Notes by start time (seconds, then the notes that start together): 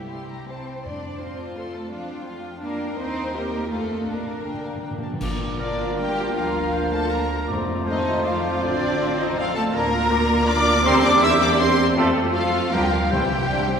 Already playing: C2 G3 E4 G4 E5
0.11 C6
0.30 A#5
0.48 C4 C5 A5
0.66 G5
0.84 F2 D4 D5 C6
1.02 A5
1.19 C4 F4 C5 C6
1.39 A5
1.57 A3 A4 C6
1.74 A5
1.92 F3 D4 F4 F5
2.10 G5
2.26 F4 F5
2.45 G5
2.62 A#3 D4 A#4 F5
2.80 G5
2.98 D#2 C4 D#4 C5 D#5
3.17 G5
3.34 A#3 G4 A#4 D#5
3.52 G5
3.70 F2 A3 F4 A4 F5
3.90 D#5
4.07 A#1 A#2 A#3 D4 A#4 F5
4.16 A#2
4.24 A#2 D5
4.32 A#2
4.46 A#2 G5
4.54 A#2
4.61 A#2 F5
4.68 A#2
4.75 A#2
4.82 A#2 G5
4.91 A#2
4.98 A#2
5.03 A#2 A5
5.13 A#2
5.21 A#1 F3 A#3 D4 F4 A#4 D5, concert bass drum, crash
5.59 D3 D4 A#4 D5
5.98 G3 G4 G5
6.36 D2 F3 F4 F5
6.74 C5
6.93 A3 A4 A5
7.11 A#3 A#4 A#5
7.48 F2 F3 A3 C4 F4 C5 D5
7.87 D#3 D#4 C5 D#5
8.24 F3 F4 D5 F5
8.62 A1 D3 C4 D4 C5 D5
9.19 D#3 D#4 D#5
9.37 F3 F4 A4 F5
9.55 A3 A4 A5
9.73 D2 F3 A#3 D4 F4 A#4 A#5
10.11 D5
10.47 D4 A#4 D5 D6
10.84 E2 C3 G3 C4 G4 A4 A#4 C5 C6
11.03 D4 D5 D6
11.22 E4 G4 E5 E6
11.40 D4 D5 D6
11.58 C4 C5 C6
11.96 F2 C3 A3 C4 F4 A4
12.34 F3 F4 A4 F5
12.73 D2 D3 F3 G3 A#3 F4 G4 A#4 G5
12.92 F3 F4 F5
13.10 C2 C3 E3 G3 C4 E4 G4 C5 G5
13.48 D4
13.69 C4